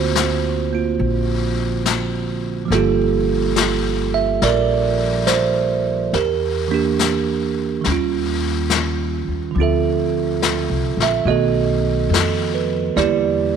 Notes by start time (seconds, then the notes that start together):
Already playing: D2 D3 A#3 C4 F#4 C5
0.15 snare, hi-hat pedal
0.72 A#3 F4
0.99 A#1, brush sweep
1.86 snare, hi-hat pedal
2.65 F3 G3
2.70 G1 A#3 F4 A4, brush sweep, snare
2.75 G4
3.56 snare, hi-hat pedal
4.14 E5
4.42 A#1 A#4 D5, brush sweep, snare
5.27 C5, snare, hi-hat pedal
6.13 E2 G4 A#4, brush sweep, snare
6.68 E3 A#3 D4
6.74 G4
6.99 snare, hi-hat pedal
7.81 D#3 G3, brush sweep, snare
7.86 D#2 C#4
7.92 F4
8.70 snare, hi-hat pedal
9.28 D#2
9.51 D3 F3
9.55 D2 C4, brush sweep
9.60 F4 A4 E5
10.42 snare, hi-hat pedal
10.70 C2
10.97 A#1, snare
11.03 E5
11.25 B1 D#3 A3 B3 F#4 D#5, brush sweep
11.30 A4
12.10 F2 A4, snare, hi-hat pedal
12.54 B4
12.96 E2 D3 G3 A#3 E4 G4 D5, brush sweep, snare